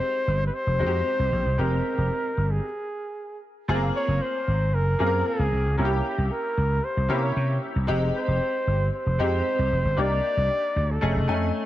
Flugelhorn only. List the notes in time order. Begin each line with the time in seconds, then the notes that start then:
Already playing: C5
0.47 B4
0.54 C5
1.59 A#4
2.51 G#4
3.96 C#5
4.22 C5
4.74 A#4
5.27 G#4
5.79 G4
6.31 A#4
6.84 C5
7.23 C#5
8.16 C5
8.95 C5
10.00 D5
10.91 A4